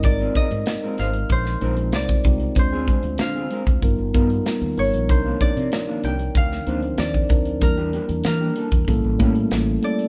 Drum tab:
HH |xxxxx-xxxxxxx-xx|x-xxx-xxx-xxx-ox|x-xxx-xxx-xxx-xx|xxxxx-xxx-xxx-xx|
SD |----o-o--o--o---|----o-------o---|----o----o--o---|----o-------o---|
BD |o-o-----o----oo-|o-o----oo-o-----|o-o-----o----oo-|o------oo-o-----|